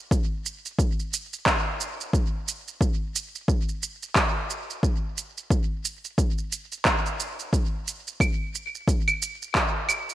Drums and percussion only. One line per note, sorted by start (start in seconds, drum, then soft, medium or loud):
0.11 kick loud
0.11 shaker soft
0.46 shaker medium
0.66 shaker soft
0.79 kick loud
0.79 shaker soft
0.99 shaker soft
1.13 shaker medium
1.33 shaker soft
1.46 kick loud
1.46 clap medium
1.46 shaker soft
1.81 shaker medium
2.01 shaker soft
2.13 kick loud
2.13 shaker soft
2.48 shaker medium
2.68 shaker soft
2.81 kick medium
2.81 shaker soft
3.16 shaker medium
3.35 shaker soft
3.48 kick loud
3.48 shaker soft
3.69 shaker soft
3.83 shaker medium
4.03 shaker soft
4.16 kick loud
4.16 clap medium
4.16 shaker soft
4.50 shaker medium
4.70 shaker soft
4.83 kick medium
4.83 shaker soft
5.18 shaker medium
5.38 shaker soft
5.50 kick loud
5.50 shaker soft
5.85 shaker medium
6.05 shaker soft
6.18 kick loud
6.18 shaker soft
6.38 shaker soft
6.52 shaker medium
6.72 shaker soft
6.85 kick loud
6.85 clap medium
6.85 shaker soft
7.06 shaker soft
7.20 shaker medium
7.40 shaker soft
7.53 kick medium
7.53 shaker soft
7.88 shaker medium
8.07 shaker soft
8.20 kick loud
8.20 claves medium
8.20 shaker soft
8.55 shaker medium
8.75 shaker soft
8.88 kick loud
8.88 shaker soft
9.08 claves medium
9.08 shaker soft
9.22 shaker medium
9.42 shaker soft
9.55 kick loud
9.55 clap medium
9.55 shaker soft
9.89 claves medium
9.89 shaker medium
10.09 shaker soft